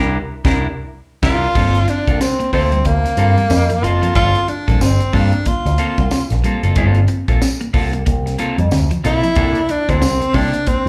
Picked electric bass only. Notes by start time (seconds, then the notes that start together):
Already playing: C2
0.45 C2
1.23 C2
1.55 G1
2.08 C2
2.53 D2
2.86 D2
3.17 G2
3.50 F2
3.83 F#1
4.15 G1
4.68 A#1
4.81 G1
5.13 G2
5.46 muted picked electric bass stroke
5.66 D2
5.98 C2
6.31 A#1
6.63 F#1
6.76 G1
7.28 A#1
7.74 C2
8.07 C2
8.58 F2
8.72 D2
9.05 B1
9.36 C2
9.89 D2
10.02 C2
10.34 C3
10.67 muted picked electric bass stroke